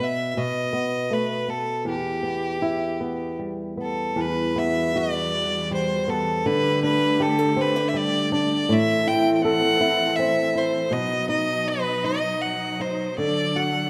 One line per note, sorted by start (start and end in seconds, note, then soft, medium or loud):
0.00 0.36 B2 medium
0.00 0.73 B3 soft
0.00 1.10 F#4 soft
0.00 0.31 E5 medium
0.31 0.39 E5 soft
0.37 1.93 B2 medium
0.37 1.15 D#5 medium
0.73 1.48 B3 medium
1.11 1.93 A3 soft
1.11 1.51 B4 medium
1.48 2.23 B3 medium
1.48 1.86 A4 medium
1.85 4.15 E2 medium
1.89 3.36 G4 medium
2.23 3.00 B3 soft
2.62 4.95 E4 medium
3.00 3.77 B3 soft
3.39 4.99 G3 soft
3.77 4.56 B3 soft
3.82 4.23 A4 medium
4.15 6.45 E2 medium
4.15 6.42 E3 medium
4.15 6.43 G3 medium
4.15 6.42 F#4 medium
4.21 4.60 B4 medium
4.56 5.32 B3 medium
4.56 4.98 E5 medium
4.96 6.54 F#4 medium
4.96 5.71 D5 medium
5.71 7.42 G3 medium
5.71 6.11 C5 medium
6.08 6.53 B3 medium
6.08 6.47 A4 medium
6.42 8.66 D3 medium
6.42 8.70 D3 medium
6.42 8.66 A3 medium
6.42 8.66 G4 medium
6.42 6.82 B4 medium
6.83 7.56 D4 medium
6.83 7.23 B4 medium
7.20 7.39 G4 medium
7.20 7.62 A4 medium
7.39 8.77 A4 medium
7.56 7.76 C4 medium
7.61 7.90 B4 medium
7.76 8.31 D4 medium
7.89 7.99 E5 medium
7.94 8.76 G3 medium
7.94 8.32 D5 medium
8.32 8.77 D4 medium
8.32 8.74 D5 medium
8.68 10.91 A2 medium
8.68 10.89 E3 medium
8.68 10.89 C4 medium
8.68 10.89 A4 medium
8.72 9.09 E5 loud
9.07 9.79 E4 medium
9.07 9.34 G5 loud
9.34 9.43 G5 medium
9.41 10.99 A4 medium
9.41 10.17 F#5 loud
9.81 10.54 E4 medium
10.16 10.99 C4 medium
10.16 10.59 E5 medium
10.55 10.99 E4 medium
10.55 10.94 C5 medium
10.90 13.18 B2 medium
10.90 13.90 F#3 medium
10.90 13.16 D#4 medium
10.90 13.16 D#5 medium
10.90 11.29 D#5 medium
11.29 12.03 D#4 medium
11.29 11.69 D#5 medium
11.68 12.06 B4 medium
12.04 12.79 D#4 soft
12.04 12.43 D#5 medium
12.42 12.82 F#5 medium
12.80 13.26 D#4 soft
12.80 13.18 C5 medium
13.18 13.90 D3 medium
13.18 13.90 D4 medium
13.18 13.90 A4 medium
13.18 13.58 D5 medium
13.56 13.90 F#4 medium
13.56 13.90 F#5 medium